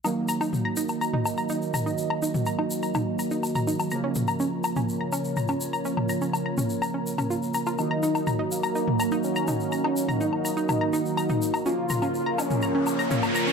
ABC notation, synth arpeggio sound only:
X:1
M:4/4
L:1/16
Q:1/4=124
K:Ebm
V:1 name="Synth arpeggio sound"
E z b E z b E z b E z b E z b E | z b E z b E z b E z b E z b E z | b D z b D z b D z b D z b D z b | D z b D z b D z b D z D F z b F |
z b E z b E z b E z b E z b E z | b E z b E z b E z b E z b E z b | D z b D z b D z b D z b D z b D |]